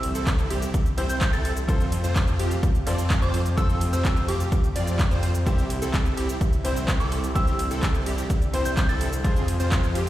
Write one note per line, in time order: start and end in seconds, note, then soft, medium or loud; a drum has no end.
0.00 0.13 C2 loud
0.00 0.97 C3 loud
0.00 9.20 C3 medium
0.00 1.65 E3 medium
0.00 1.65 G3 medium
0.00 0.97 C4 medium
0.00 0.98 E4 medium
0.00 1.65 E4 medium
0.00 0.98 G4 medium
0.00 0.98 C5 loud
0.00 open hi-hat loud
0.00 ride medium
0.15 0.48 C2 loud
0.15 0.48 C4 medium
0.15 0.48 E4 medium
0.15 0.48 A4 medium
0.15 closed hi-hat medium
0.15 shaker medium
0.27 kick loud
0.27 clap loud
0.27 closed hi-hat medium
0.27 ride medium
0.27 shaker medium
0.39 closed hi-hat soft
0.39 shaker soft
0.50 0.66 C2 loud
0.50 0.69 C4 medium
0.50 0.69 E4 medium
0.50 0.69 G4 medium
0.50 open hi-hat loud
0.50 ride medium
0.62 closed hi-hat medium
0.62 shaker medium
0.74 kick loud
0.74 closed hi-hat medium
0.74 ride medium
0.74 shaker medium
0.86 closed hi-hat soft
0.86 shaker soft
0.97 1.31 C2 loud
0.97 1.18 C3 medium
0.97 1.18 C4 medium
0.97 1.27 C4 medium
0.97 1.27 E4 medium
0.97 1.18 E4 medium
0.97 1.18 G4 medium
0.97 1.27 C5 medium
0.97 1.18 C5 loud
0.97 open hi-hat loud
0.97 ride medium
1.09 1.30 G6 medium
1.09 closed hi-hat medium
1.09 shaker medium
1.21 kick loud
1.21 clap loud
1.21 closed hi-hat medium
1.21 ride medium
1.21 shaker medium
1.33 1.66 C2 medium
1.33 1.51 C4 medium
1.33 1.51 E4 medium
1.33 1.51 A4 loud
1.33 1.73 A6 medium
1.33 closed hi-hat soft
1.33 shaker soft
1.45 open hi-hat loud
1.45 ride medium
1.57 closed hi-hat medium
1.57 shaker medium
1.67 2.02 F2 loud
1.67 2.83 F3 loud
1.67 5.43 F3 medium
1.67 5.43 A3 medium
1.67 2.84 C4 medium
1.67 1.87 C4 medium
1.67 2.84 F4 medium
1.67 1.87 F4 medium
1.67 3.56 F4 medium
1.67 1.87 A4 loud
1.67 2.84 A4 medium
1.67 2.84 C5 loud
1.67 kick loud
1.67 closed hi-hat soft
1.67 ride medium
1.67 shaker medium
1.80 closed hi-hat soft
1.80 shaker soft
1.92 open hi-hat loud
1.92 ride medium
2.04 2.37 F2 loud
2.04 2.37 C4 medium
2.04 2.37 F4 medium
2.04 2.37 C5 medium
2.04 closed hi-hat medium
2.04 shaker medium
2.16 kick loud
2.16 clap loud
2.16 closed hi-hat medium
2.16 ride medium
2.16 shaker medium
2.28 closed hi-hat soft
2.28 shaker soft
2.39 2.55 F2 loud
2.39 2.58 C4 medium
2.39 2.58 F4 medium
2.39 2.58 G4 medium
2.39 open hi-hat medium
2.39 ride medium
2.51 closed hi-hat medium
2.51 shaker medium
2.63 kick loud
2.63 closed hi-hat medium
2.63 ride medium
2.63 shaker medium
2.75 closed hi-hat soft
2.75 shaker soft
2.86 3.20 F2 loud
2.86 3.07 F3 medium
2.86 3.07 C4 medium
2.86 3.16 C4 medium
2.86 3.16 F4 medium
2.86 3.07 F4 medium
2.86 3.07 A4 medium
2.86 3.07 C5 loud
2.86 3.16 D5 medium
2.86 open hi-hat loud
2.86 ride medium
2.98 closed hi-hat medium
2.98 shaker medium
3.10 kick loud
3.10 clap loud
3.10 closed hi-hat medium
3.10 ride medium
3.10 shaker medium
3.22 3.55 F2 medium
3.22 3.40 C4 loud
3.22 3.40 F4 medium
3.22 3.40 C5 loud
3.22 3.42 D6 medium
3.22 closed hi-hat soft
3.22 shaker soft
3.34 open hi-hat loud
3.34 ride medium
3.46 closed hi-hat medium
3.46 shaker medium
3.56 3.91 F2 loud
3.56 4.72 F3 loud
3.56 4.72 C4 medium
3.56 3.76 C4 loud
3.56 4.73 F4 medium
3.56 3.76 F4 medium
3.56 5.45 G4 loud
3.56 3.76 A4 medium
3.56 3.76 A4 loud
3.56 4.73 A4 medium
3.56 4.73 C5 loud
3.56 3.78 E6 medium
3.56 kick loud
3.56 closed hi-hat soft
3.56 ride medium
3.56 shaker medium
3.69 closed hi-hat soft
3.69 shaker soft
3.81 open hi-hat loud
3.81 ride medium
3.93 4.26 F2 medium
3.93 4.26 C4 medium
3.93 4.26 F4 medium
3.93 4.26 C5 medium
3.93 4.26 E6 medium
3.93 closed hi-hat medium
3.93 shaker medium
4.05 kick loud
4.05 clap loud
4.05 closed hi-hat medium
4.05 ride medium
4.05 shaker medium
4.17 closed hi-hat soft
4.17 shaker soft
4.28 4.44 F2 loud
4.28 4.47 C4 medium
4.28 4.47 F4 medium
4.28 4.47 G4 medium
4.28 4.76 D6 medium
4.28 open hi-hat loud
4.28 ride medium
4.40 closed hi-hat soft
4.40 shaker medium
4.52 kick loud
4.52 closed hi-hat medium
4.52 ride medium
4.52 shaker medium
4.64 closed hi-hat soft
4.64 shaker soft
4.76 5.09 F2 loud
4.76 5.05 C4 medium
4.76 5.05 F4 medium
4.76 5.05 D5 medium
4.76 open hi-hat loud
4.76 ride medium
4.88 closed hi-hat medium
4.88 shaker medium
4.99 kick loud
4.99 clap loud
4.99 closed hi-hat soft
4.99 ride medium
4.99 shaker medium
5.11 5.44 F2 loud
5.11 5.29 C4 medium
5.11 5.29 F4 medium
5.11 5.29 C5 loud
5.11 closed hi-hat soft
5.11 shaker soft
5.23 open hi-hat loud
5.23 ride medium
5.35 closed hi-hat medium
5.35 shaker medium
5.45 5.80 C2 loud
5.45 6.61 C3 loud
5.45 9.21 E3 medium
5.45 9.21 G3 medium
5.45 6.61 C4 medium
5.45 5.65 C4 medium
5.45 6.62 E4 medium
5.45 7.34 E4 loud
5.45 5.65 E4 medium
5.45 5.65 G4 loud
5.45 6.62 G4 medium
5.45 6.62 C5 loud
5.45 kick loud
5.45 closed hi-hat soft
5.45 ride medium
5.45 shaker medium
5.58 closed hi-hat soft
5.58 shaker soft
5.70 open hi-hat loud
5.70 ride medium
5.82 6.15 C2 medium
5.82 6.15 C4 medium
5.82 6.15 E4 medium
5.82 6.15 A4 medium
5.82 closed hi-hat medium
5.82 shaker medium
5.94 kick loud
5.94 clap loud
5.94 closed hi-hat soft
5.94 ride medium
5.94 shaker medium
6.06 closed hi-hat soft
6.06 shaker soft
6.17 6.33 C2 loud
6.17 6.36 C4 medium
6.17 6.36 E4 medium
6.17 6.36 G4 medium
6.17 open hi-hat medium
6.17 ride medium
6.29 closed hi-hat soft
6.29 shaker medium
6.41 kick loud
6.41 closed hi-hat medium
6.41 ride medium
6.41 shaker medium
6.53 closed hi-hat soft
6.53 shaker soft
6.64 6.98 C2 medium
6.64 6.85 C3 medium
6.64 6.85 C4 medium
6.64 6.94 C4 medium
6.64 6.85 E4 medium
6.64 6.94 E4 medium
6.64 6.85 G4 medium
6.64 6.94 C5 medium
6.64 6.85 C5 loud
6.64 open hi-hat loud
6.64 ride medium
6.76 closed hi-hat medium
6.76 shaker medium
6.88 kick loud
6.88 clap loud
6.88 closed hi-hat medium
6.88 ride medium
6.88 shaker medium
7.00 7.33 C2 loud
7.00 7.18 C4 loud
7.00 7.18 E4 medium
7.00 7.18 A4 loud
7.00 7.20 D6 medium
7.00 closed hi-hat soft
7.00 shaker soft
7.12 open hi-hat loud
7.12 ride medium
7.24 closed hi-hat medium
7.24 shaker medium
7.34 7.69 C2 loud
7.34 8.50 C3 loud
7.34 8.50 C4 medium
7.34 7.54 C4 medium
7.34 9.23 D4 loud
7.34 7.54 E4 medium
7.34 8.51 E4 medium
7.34 7.54 G4 loud
7.34 8.51 G4 medium
7.34 8.51 C5 loud
7.34 7.56 E6 medium
7.34 kick loud
7.34 closed hi-hat medium
7.34 ride medium
7.34 shaker medium
7.47 closed hi-hat soft
7.47 shaker soft
7.59 open hi-hat loud
7.59 ride medium
7.71 8.04 C2 loud
7.71 8.04 C4 medium
7.71 8.04 E4 medium
7.71 8.04 A4 medium
7.71 closed hi-hat medium
7.71 shaker medium
7.83 kick loud
7.83 clap loud
7.83 closed hi-hat medium
7.83 ride medium
7.83 shaker medium
7.95 closed hi-hat soft
7.95 shaker soft
8.06 8.22 C2 loud
8.06 8.25 C4 medium
8.06 8.25 E4 medium
8.06 8.25 G4 medium
8.06 open hi-hat medium
8.06 ride medium
8.18 closed hi-hat soft
8.18 shaker medium
8.30 kick loud
8.30 closed hi-hat medium
8.30 ride medium
8.30 shaker medium
8.42 closed hi-hat soft
8.42 shaker soft
8.53 8.87 C2 loud
8.53 8.74 C3 medium
8.53 8.74 C4 medium
8.53 8.83 C4 medium
8.53 8.74 E4 medium
8.53 8.83 E4 medium
8.53 8.74 G4 medium
8.53 8.83 C5 medium
8.53 8.74 C5 loud
8.53 open hi-hat loud
8.53 ride medium
8.65 8.86 G6 medium
8.65 closed hi-hat medium
8.65 shaker medium
8.77 kick loud
8.77 clap loud
8.77 closed hi-hat medium
8.77 ride medium
8.77 shaker medium
8.89 9.22 C2 loud
8.89 9.07 C4 medium
8.89 9.07 E4 medium
8.89 9.07 A4 loud
8.89 9.29 A6 medium
8.89 closed hi-hat soft
8.89 shaker soft
9.01 open hi-hat medium
9.01 ride medium
9.13 closed hi-hat medium
9.13 shaker medium
9.23 9.58 F2 loud
9.23 10.09 C3 medium
9.23 10.09 F3 loud
9.23 10.09 F3 medium
9.23 10.09 G#3 medium
9.23 10.09 C4 medium
9.23 9.43 C4 medium
9.23 10.09 F4 medium
9.23 9.43 F4 medium
9.23 10.09 F4 medium
9.23 9.43 G#4 loud
9.23 10.09 G#4 medium
9.23 10.09 C5 loud
9.23 kick loud
9.23 closed hi-hat medium
9.23 ride medium
9.23 shaker medium
9.36 closed hi-hat soft
9.36 shaker soft
9.48 open hi-hat loud
9.48 ride medium
9.60 9.93 F2 loud
9.60 9.92 C4 medium
9.60 9.92 F4 medium
9.60 9.92 C5 medium
9.60 9.93 C5 medium
9.60 closed hi-hat medium
9.60 shaker medium
9.72 kick loud
9.72 clap loud
9.72 closed hi-hat medium
9.72 ride medium
9.72 shaker medium
9.84 closed hi-hat soft
9.84 shaker soft
9.95 10.09 F2 loud
9.95 10.09 C4 medium
9.95 10.09 F4 medium
9.95 10.09 G4 medium
9.95 open hi-hat medium
9.95 ride medium